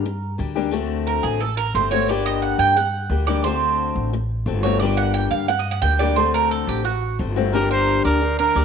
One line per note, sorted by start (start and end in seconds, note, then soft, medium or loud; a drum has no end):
0.00 0.35 G2 medium
0.00 0.35 A#4 medium
0.05 muted steel-string acoustic guitar stroke medium
0.38 1.18 D2 medium
0.38 0.55 G3 medium
0.38 0.55 A#3 medium
0.38 0.55 D4 soft
0.38 0.54 G4 medium
0.56 0.71 G3 medium
0.56 0.72 A#3 medium
0.56 0.72 D4 medium
0.56 0.72 G4 medium
0.71 1.39 D3 medium
0.71 1.40 A3 medium
0.71 1.40 C4 medium
0.71 1.40 F#4 medium
1.07 1.23 A#4 medium
1.23 1.71 A1 medium
1.23 1.40 G#4 medium
1.40 1.57 A4 medium
1.40 muted steel-string acoustic guitar stroke medium
1.57 1.74 A#4 loud
1.74 2.54 G1 medium
1.74 1.91 D3 medium
1.74 1.91 A3 medium
1.74 1.92 C4 medium
1.74 1.91 F#4 medium
1.74 1.91 C5 medium
1.91 2.09 A3 medium
1.91 2.09 C4 medium
1.91 2.08 F#4 medium
1.91 2.08 C#5 medium
2.08 2.76 D3 medium
2.08 2.76 G3 medium
2.08 2.76 A#3 medium
2.08 2.77 D4 medium
2.08 2.76 G4 loud
2.08 2.25 D5 medium
2.26 2.42 D#5 loud
2.42 2.59 F#5 medium
2.58 3.07 G2 medium
2.58 2.76 G5 loud
2.76 3.24 F#5 medium
2.76 muted steel-string acoustic guitar stroke medium
3.10 3.90 D2 loud
3.10 3.27 G3 medium
3.10 3.27 A#3 medium
3.10 3.27 D4 soft
3.10 3.26 G4 medium
3.27 3.44 G3 medium
3.27 3.45 A#3 medium
3.27 3.45 D4 medium
3.27 3.44 G4 medium
3.27 3.43 D5 medium
3.44 4.12 D3 medium
3.44 4.12 A3 medium
3.44 4.13 C4 medium
3.44 4.13 F#4 medium
3.44 4.09 C5 medium
3.96 4.43 A1 medium
4.13 muted steel-string acoustic guitar stroke medium
4.46 5.26 G1 loud
4.46 4.63 D3 soft
4.46 4.63 A3 soft
4.46 4.64 C4 medium
4.46 4.63 F#4 medium
4.63 4.81 A3 medium
4.63 4.81 C4 medium
4.63 4.80 F#4 medium
4.63 4.79 C#5 loud
4.80 5.48 D3 medium
4.80 5.48 G3 medium
4.80 5.48 A#3 medium
4.80 5.50 D4 medium
4.80 5.49 G4 medium
4.80 4.97 D5 medium
4.97 5.13 F#5 loud
5.14 5.30 G5 loud
5.31 5.79 G2 medium
5.31 5.48 F5 medium
5.48 5.60 F#5 loud
5.48 muted steel-string acoustic guitar stroke medium
5.59 5.71 D#5 medium
5.71 5.81 F#5 loud
5.82 6.62 D2 loud
5.82 5.99 G3 soft
5.82 6.00 A#3 medium
5.82 6.00 D4 medium
5.82 5.99 G4 medium
5.82 5.99 G5 loud
5.99 6.16 G3 medium
5.99 6.17 A#3 medium
5.99 6.17 D4 medium
5.99 6.17 G4 medium
5.99 6.16 D5 loud
6.16 6.83 D3 medium
6.16 6.83 A3 medium
6.16 6.84 C4 medium
6.16 6.84 F#4 medium
6.16 6.33 C5 medium
6.34 6.51 A#4 loud
6.51 6.68 A4 medium
6.67 7.16 A1 medium
6.67 6.84 G4 medium
6.84 7.17 F#4 medium
6.84 muted steel-string acoustic guitar stroke medium
7.19 7.99 G1 medium
7.19 7.36 D3 soft
7.19 7.36 A3 medium
7.19 7.36 C4 medium
7.19 7.35 F#4 medium
7.36 7.54 A3 medium
7.36 7.53 C4 medium
7.36 7.53 F#4 medium
7.53 8.20 D3 medium
7.53 8.21 G3 medium
7.53 8.21 A#3 medium
7.53 7.70 D4 medium
7.53 8.22 D4 medium
7.53 8.21 G4 loud
7.53 7.70 A#4 medium
7.71 8.03 G4 medium
7.71 8.04 A#4 medium
7.71 8.03 C5 loud
8.05 8.53 D2 medium
8.05 8.37 D4 medium
8.05 8.37 A#4 medium
8.05 8.38 D5 medium
8.21 muted steel-string acoustic guitar stroke medium
8.39 8.65 D4 medium
8.39 8.56 A#4 medium
8.39 8.65 A#4 medium
8.55 8.65 D2 loud
8.55 8.65 G3 medium
8.55 8.65 A#3 soft
8.55 8.65 D4 medium
8.55 8.65 G4 medium
8.55 8.65 D5 medium